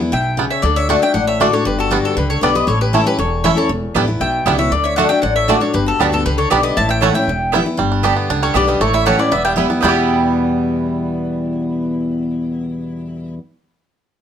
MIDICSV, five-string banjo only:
0, 0, Header, 1, 2, 480
1, 0, Start_track
1, 0, Tempo, 255428
1, 1201, Time_signature, 4, 2, 24, 8
1, 26713, End_track
2, 0, Start_track
2, 0, Title_t, "Five-string banjo"
2, 0, Program_c, 0, 105
2, 727, Note_on_c, 0, 55, 71
2, 733, Note_on_c, 0, 59, 70
2, 738, Note_on_c, 0, 62, 71
2, 831, Note_off_c, 0, 55, 0
2, 831, Note_off_c, 0, 59, 0
2, 835, Note_off_c, 0, 62, 0
2, 1688, Note_on_c, 0, 57, 65
2, 1695, Note_on_c, 0, 62, 66
2, 1700, Note_off_c, 0, 62, 0
2, 1700, Note_on_c, 0, 62, 64
2, 1790, Note_off_c, 0, 57, 0
2, 1796, Note_off_c, 0, 62, 0
2, 2645, Note_on_c, 0, 57, 76
2, 2654, Note_on_c, 0, 62, 76
2, 2662, Note_off_c, 0, 62, 0
2, 2662, Note_on_c, 0, 62, 72
2, 2748, Note_off_c, 0, 57, 0
2, 2756, Note_off_c, 0, 62, 0
2, 3600, Note_on_c, 0, 55, 65
2, 3617, Note_on_c, 0, 59, 66
2, 3618, Note_on_c, 0, 62, 69
2, 3706, Note_off_c, 0, 55, 0
2, 3710, Note_off_c, 0, 59, 0
2, 3713, Note_off_c, 0, 62, 0
2, 4567, Note_on_c, 0, 55, 71
2, 4571, Note_on_c, 0, 59, 72
2, 4587, Note_on_c, 0, 62, 69
2, 4668, Note_off_c, 0, 55, 0
2, 4672, Note_off_c, 0, 59, 0
2, 4675, Note_off_c, 0, 62, 0
2, 5525, Note_on_c, 0, 57, 68
2, 5537, Note_on_c, 0, 61, 61
2, 5541, Note_on_c, 0, 64, 65
2, 5628, Note_off_c, 0, 57, 0
2, 5630, Note_off_c, 0, 61, 0
2, 5635, Note_off_c, 0, 64, 0
2, 6481, Note_on_c, 0, 57, 68
2, 6494, Note_on_c, 0, 61, 69
2, 6498, Note_on_c, 0, 64, 73
2, 6585, Note_off_c, 0, 57, 0
2, 6588, Note_off_c, 0, 61, 0
2, 6593, Note_off_c, 0, 64, 0
2, 7435, Note_on_c, 0, 55, 61
2, 7445, Note_on_c, 0, 62, 68
2, 7447, Note_on_c, 0, 59, 70
2, 7542, Note_off_c, 0, 55, 0
2, 7545, Note_off_c, 0, 59, 0
2, 7546, Note_off_c, 0, 62, 0
2, 8396, Note_on_c, 0, 55, 65
2, 8404, Note_on_c, 0, 59, 73
2, 8415, Note_on_c, 0, 62, 67
2, 8503, Note_off_c, 0, 55, 0
2, 8504, Note_off_c, 0, 59, 0
2, 8507, Note_off_c, 0, 62, 0
2, 9357, Note_on_c, 0, 57, 67
2, 9362, Note_on_c, 0, 62, 70
2, 9366, Note_off_c, 0, 62, 0
2, 9366, Note_on_c, 0, 62, 65
2, 9462, Note_off_c, 0, 57, 0
2, 9466, Note_off_c, 0, 62, 0
2, 10323, Note_on_c, 0, 57, 74
2, 10336, Note_on_c, 0, 62, 71
2, 10338, Note_off_c, 0, 62, 0
2, 10338, Note_on_c, 0, 62, 68
2, 10375, Note_off_c, 0, 62, 0
2, 10427, Note_off_c, 0, 57, 0
2, 11286, Note_on_c, 0, 55, 70
2, 11296, Note_on_c, 0, 59, 65
2, 11300, Note_on_c, 0, 62, 68
2, 11386, Note_off_c, 0, 55, 0
2, 11392, Note_off_c, 0, 59, 0
2, 11392, Note_off_c, 0, 62, 0
2, 12245, Note_on_c, 0, 55, 63
2, 12256, Note_on_c, 0, 59, 78
2, 12260, Note_on_c, 0, 62, 74
2, 12347, Note_off_c, 0, 55, 0
2, 12349, Note_off_c, 0, 59, 0
2, 12353, Note_off_c, 0, 62, 0
2, 13198, Note_on_c, 0, 57, 65
2, 13212, Note_on_c, 0, 61, 72
2, 13216, Note_on_c, 0, 64, 64
2, 13303, Note_off_c, 0, 57, 0
2, 13305, Note_off_c, 0, 61, 0
2, 13311, Note_off_c, 0, 64, 0
2, 14156, Note_on_c, 0, 55, 69
2, 14167, Note_on_c, 0, 59, 70
2, 14168, Note_on_c, 0, 64, 71
2, 14262, Note_off_c, 0, 55, 0
2, 14264, Note_off_c, 0, 59, 0
2, 14267, Note_off_c, 0, 64, 0
2, 14634, Note_on_c, 0, 55, 81
2, 14877, Note_on_c, 0, 62, 51
2, 15115, Note_on_c, 0, 67, 59
2, 15307, Note_off_c, 0, 55, 0
2, 15345, Note_on_c, 0, 59, 58
2, 15548, Note_off_c, 0, 62, 0
2, 15599, Note_on_c, 0, 62, 67
2, 15787, Note_off_c, 0, 67, 0
2, 15835, Note_on_c, 0, 55, 63
2, 16022, Note_off_c, 0, 59, 0
2, 16054, Note_off_c, 0, 62, 0
2, 16077, Note_on_c, 0, 62, 63
2, 16297, Note_off_c, 0, 55, 0
2, 16319, Note_on_c, 0, 55, 62
2, 16548, Note_off_c, 0, 55, 0
2, 16555, Note_on_c, 0, 57, 83
2, 16556, Note_off_c, 0, 62, 0
2, 16805, Note_on_c, 0, 64, 56
2, 17039, Note_on_c, 0, 67, 60
2, 17228, Note_off_c, 0, 57, 0
2, 17278, Note_on_c, 0, 61, 53
2, 17472, Note_off_c, 0, 64, 0
2, 17507, Note_off_c, 0, 61, 0
2, 17515, Note_on_c, 0, 59, 67
2, 17517, Note_off_c, 0, 67, 0
2, 17751, Note_on_c, 0, 55, 64
2, 17988, Note_on_c, 0, 64, 62
2, 18188, Note_off_c, 0, 59, 0
2, 18227, Note_on_c, 0, 59, 61
2, 18426, Note_off_c, 0, 55, 0
2, 18464, Note_on_c, 0, 55, 82
2, 18471, Note_off_c, 0, 59, 0
2, 18472, Note_off_c, 0, 64, 0
2, 18500, Note_on_c, 0, 59, 89
2, 18538, Note_on_c, 0, 64, 75
2, 18578, Note_on_c, 0, 67, 81
2, 25056, Note_off_c, 0, 55, 0
2, 25074, Note_off_c, 0, 59, 0
2, 25093, Note_off_c, 0, 64, 0
2, 25113, Note_off_c, 0, 67, 0
2, 26713, End_track
0, 0, End_of_file